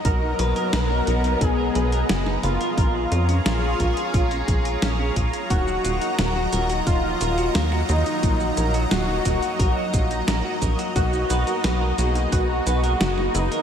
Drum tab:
HH |x-xxx-xxx-xxx-xx|x-xxx-xxxxxxx-xx|x-xxx-xxx-xxx-xx|x-xxx-xxx-xxx-xx|
SH |----------------|----------------|xxxxx-xxx-xxx-xx|xxxxx-xxx-xxx-xx|
SD |----o-------oo--|----o-------o---|----o-------oo--|----o-------o---|
BD |o-------o-------|o-----o-o-o---o-|o-------o-------|o-----o-o-o---o-|

HH |x-xxx-xxx-xxx-xx|
SH |xxxxx-xxx-xxx-xx|
SD |----o-------oo--|
BD |o-------o-------|